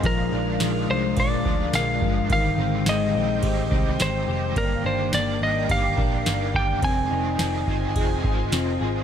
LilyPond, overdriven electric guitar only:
\new Staff \with { instrumentName = "Overdriven electric guitar" } { \clef bass \time 4/4 \key bes \mixolydian \tempo 4 = 106 <bes, f aes d'>8 <f aes d'>8 <bes, f aes d'>8 <f aes d'>8 <bes, f aes d'>8 <f aes d'>8 <bes, f aes d'>8 <f aes d'>8 | <aes, ees g c' ees'>8 <g c' ees'>8 <aes, ees g c' ees'>8 <g c' ees'>8 <ees g c' ees'>8 <g c' ees'>8 <aes, ees g c' ees'>8 <g c' ees'>8 | <g, ees g bes d'>8 <g bes d'>8 <g, ees g bes d'>8 <g bes d'>8 <ees g bes d'>8 <g bes d'>8 <g, ees g bes d'>8 <g bes d'>8 | <f, c ees aes c'>8 <ees aes c'>8 <f, c ees aes c'>8 <ees aes c'>8 <c ees aes c'>8 <ees aes c'>8 <f, c ees aes c'>8 <ees aes c'>8 | }